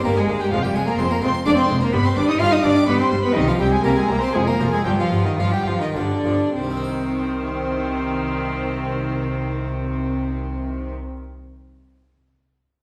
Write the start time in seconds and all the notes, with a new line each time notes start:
0.04 G1 G2 A#3 G4 A#4 A#5
0.17 G#3 D#4 G#4 G#5
0.29 G1 G2 A#3 D4
0.40 G3 D#4 G4 G5
0.51 F1 F2 F3 G#3 F4 F5
0.63 G3 G4 C5 G5
0.74 F1 F2 G#3 G#4 G#5
0.86 A#3 F4 A#4 A#5
0.98 F1 F2 G#3 C4 C5 C6
1.11 A#3 G#4 A#4 A#5
1.21 F1 F2 G#3 C4 F4 C5 C6
1.34 C5
1.46 F1 F2 G#3 D4 G#4 D5 D6
1.57 C4 F4 C5 C6
1.68 F1 F2 G#3 D#4
1.81 A#3 F4 A#4 A#5
1.92 G1 G2 G3 B3 B4 B5
2.03 C4 G4 C5 C6
2.16 G1 G2 G3 D4 D5 D6
2.28 D#4 D#5 D#6
2.39 G1 G2 G3 F4 G4 F5 F6
2.51 D4 D#4 D#5 D#6
2.62 G1 G2 G3 D4 D5 D6
2.76 G4
2.87 G1 G2 G3 B3 D4 B4 B5
2.99 C4 C5 C6
3.11 G1 G2 G3
3.23 B3 B4 B5
3.35 C2 C3 D#3 G3 D#4 D#5
3.48 F3 F4 G4 F5
3.59 C2 C3 G3 C4 G4 G5
3.72 G#3 G#4 G#5
3.83 C2 C3 G3 A#3 G4 A#4 A#5
3.96 G#3 C4 G#4 G#5
4.09 C2 C3 G3 A#3 A#4 A#5
4.21 C4 G4 C5 C6
4.33 F1 F2 F3 G#3 G#4 G#5
4.47 A#3 G#4 A#4 A#5
4.59 F1 F2 F3 F4
4.73 G#3 C4 G#4 G#5
4.85 G1 G2 F3 G3 G4 G5
4.99 F3 F4 F5
5.11 G1 G2 F3 B3
5.25 D#3 D#4 D#5
5.38 G1 G2 F3 F4 F5
5.51 G3 B3 G4 G5
5.66 G1 G2 F3 F4 F5
5.80 D#3 D#4 F4 D#5
5.94 G1 G2 D3 F3 B3 D4 D5
6.25 G1 G2 F3
6.54 C2 C3 D#3 C4 C5
6.64 G3
6.71 C4
6.77 D#4
6.84 C5